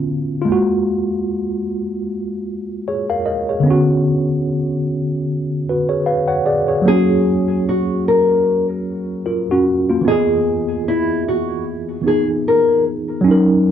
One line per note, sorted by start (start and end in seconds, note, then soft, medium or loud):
0.00 0.46 D3 soft
0.00 0.47 B3 soft
0.00 0.48 C#4 soft
0.00 0.40 F4 soft
0.42 3.62 G#3 medium
0.42 3.60 F4 medium
0.48 3.63 A#3 medium
0.48 3.65 F#4 medium
2.88 3.09 G#4 soft
2.88 3.08 C#5 medium
3.10 3.25 A#4 medium
3.10 3.26 F5 medium
3.26 3.48 A#4 medium
3.26 3.47 D#5 medium
3.49 3.87 G#4 soft
3.49 3.87 C#5 medium
3.60 6.39 D3 medium
3.60 6.41 B3 medium
3.67 6.43 C#4 medium
3.67 5.64 F#4 medium
5.69 5.90 F#4 soft
5.69 5.89 B4 medium
5.89 6.06 G#4 soft
5.89 6.06 C#5 medium
6.06 6.28 B4 medium
6.06 6.27 F5 medium
6.28 6.45 C#5 medium
6.28 6.45 F#5 medium
6.46 6.68 G#4 medium
6.46 6.67 D5 medium
6.68 7.07 G#4 soft
6.68 7.07 C#5 medium
6.82 10.00 F#3 medium
6.82 9.22 A#3 medium
6.88 9.24 C#4 medium
6.88 7.63 G#4 loud
6.92 9.25 F#4 medium
7.69 8.04 F#4 medium
8.08 8.66 A#4 medium
9.26 9.47 F4 medium
9.26 9.47 A#4 medium
9.51 9.88 C#4 medium
9.51 9.88 F#4 medium
9.90 10.27 A#3 medium
9.90 10.27 F4 medium
10.01 12.00 E3 medium
10.01 12.02 B3 medium
10.08 10.83 G#4 loud
10.08 12.05 G#4 medium
10.08 12.03 D#5 medium
10.88 11.23 E4 medium
11.28 11.63 F#4 medium
12.02 13.24 E3 soft
12.02 13.25 B3 soft
12.02 13.26 D#4 soft
12.07 13.27 G#4 medium
12.07 12.27 G#4 medium
12.48 12.83 A#4 medium
13.21 13.71 F#3 medium
13.21 13.71 C#4 medium
13.28 13.71 D#4 medium
13.28 13.71 A#4 medium